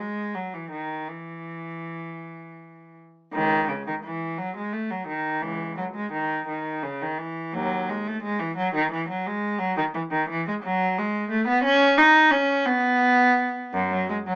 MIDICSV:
0, 0, Header, 1, 2, 480
1, 0, Start_track
1, 0, Tempo, 749064
1, 697, Time_signature, 6, 3, 24, 8
1, 2136, Tempo, 699301
1, 5496, Tempo, 684151
1, 8856, Tempo, 720288
1, 9745, End_track
2, 0, Start_track
2, 0, Title_t, "Cello"
2, 0, Program_c, 0, 42
2, 0, Note_on_c, 0, 56, 72
2, 218, Note_off_c, 0, 56, 0
2, 220, Note_on_c, 0, 54, 64
2, 336, Note_off_c, 0, 54, 0
2, 341, Note_on_c, 0, 52, 56
2, 455, Note_on_c, 0, 51, 58
2, 458, Note_off_c, 0, 52, 0
2, 692, Note_off_c, 0, 51, 0
2, 696, Note_on_c, 0, 52, 63
2, 1904, Note_off_c, 0, 52, 0
2, 2133, Note_on_c, 0, 51, 88
2, 2135, Note_on_c, 0, 37, 70
2, 2360, Note_off_c, 0, 51, 0
2, 2361, Note_off_c, 0, 37, 0
2, 2377, Note_on_c, 0, 49, 67
2, 2499, Note_off_c, 0, 49, 0
2, 2503, Note_on_c, 0, 51, 73
2, 2551, Note_off_c, 0, 51, 0
2, 2619, Note_on_c, 0, 52, 73
2, 2851, Note_on_c, 0, 54, 81
2, 2856, Note_off_c, 0, 52, 0
2, 2977, Note_off_c, 0, 54, 0
2, 2983, Note_on_c, 0, 56, 73
2, 3091, Note_on_c, 0, 57, 73
2, 3100, Note_off_c, 0, 56, 0
2, 3214, Note_on_c, 0, 54, 66
2, 3217, Note_off_c, 0, 57, 0
2, 3331, Note_on_c, 0, 51, 68
2, 3338, Note_off_c, 0, 54, 0
2, 3567, Note_on_c, 0, 52, 77
2, 3569, Note_on_c, 0, 37, 56
2, 3572, Note_off_c, 0, 51, 0
2, 3799, Note_off_c, 0, 37, 0
2, 3809, Note_on_c, 0, 54, 74
2, 3815, Note_off_c, 0, 52, 0
2, 3859, Note_off_c, 0, 54, 0
2, 3930, Note_on_c, 0, 56, 81
2, 4053, Note_off_c, 0, 56, 0
2, 4053, Note_on_c, 0, 51, 76
2, 4286, Note_off_c, 0, 51, 0
2, 4294, Note_on_c, 0, 51, 67
2, 4531, Note_off_c, 0, 51, 0
2, 4532, Note_on_c, 0, 49, 71
2, 4655, Note_off_c, 0, 49, 0
2, 4663, Note_on_c, 0, 51, 68
2, 4777, Note_on_c, 0, 52, 75
2, 4781, Note_off_c, 0, 51, 0
2, 5018, Note_off_c, 0, 52, 0
2, 5022, Note_on_c, 0, 54, 89
2, 5023, Note_on_c, 0, 39, 71
2, 5244, Note_off_c, 0, 39, 0
2, 5260, Note_off_c, 0, 54, 0
2, 5265, Note_on_c, 0, 56, 80
2, 5381, Note_off_c, 0, 56, 0
2, 5388, Note_on_c, 0, 57, 83
2, 5497, Note_on_c, 0, 56, 86
2, 5502, Note_off_c, 0, 57, 0
2, 5613, Note_on_c, 0, 52, 83
2, 5615, Note_off_c, 0, 56, 0
2, 5736, Note_off_c, 0, 52, 0
2, 5736, Note_on_c, 0, 54, 85
2, 5855, Note_off_c, 0, 54, 0
2, 5860, Note_on_c, 0, 51, 87
2, 5977, Note_off_c, 0, 51, 0
2, 5979, Note_on_c, 0, 52, 86
2, 6095, Note_off_c, 0, 52, 0
2, 6101, Note_on_c, 0, 54, 79
2, 6216, Note_off_c, 0, 54, 0
2, 6223, Note_on_c, 0, 56, 88
2, 6449, Note_on_c, 0, 54, 101
2, 6458, Note_off_c, 0, 56, 0
2, 6572, Note_off_c, 0, 54, 0
2, 6578, Note_on_c, 0, 51, 84
2, 6626, Note_off_c, 0, 51, 0
2, 6699, Note_on_c, 0, 52, 89
2, 6747, Note_off_c, 0, 52, 0
2, 6820, Note_on_c, 0, 51, 81
2, 6937, Note_off_c, 0, 51, 0
2, 6944, Note_on_c, 0, 52, 88
2, 7059, Note_off_c, 0, 52, 0
2, 7070, Note_on_c, 0, 56, 85
2, 7116, Note_off_c, 0, 56, 0
2, 7181, Note_on_c, 0, 54, 98
2, 7414, Note_off_c, 0, 54, 0
2, 7426, Note_on_c, 0, 56, 86
2, 7652, Note_on_c, 0, 57, 95
2, 7660, Note_off_c, 0, 56, 0
2, 7771, Note_off_c, 0, 57, 0
2, 7775, Note_on_c, 0, 59, 91
2, 7889, Note_on_c, 0, 61, 113
2, 7891, Note_off_c, 0, 59, 0
2, 8124, Note_off_c, 0, 61, 0
2, 8124, Note_on_c, 0, 63, 100
2, 8360, Note_on_c, 0, 61, 97
2, 8366, Note_off_c, 0, 63, 0
2, 8604, Note_on_c, 0, 59, 104
2, 8607, Note_off_c, 0, 61, 0
2, 9333, Note_on_c, 0, 42, 102
2, 9338, Note_off_c, 0, 59, 0
2, 9456, Note_off_c, 0, 42, 0
2, 9456, Note_on_c, 0, 54, 85
2, 9571, Note_on_c, 0, 56, 88
2, 9578, Note_off_c, 0, 54, 0
2, 9620, Note_off_c, 0, 56, 0
2, 9692, Note_on_c, 0, 54, 88
2, 9745, Note_off_c, 0, 54, 0
2, 9745, End_track
0, 0, End_of_file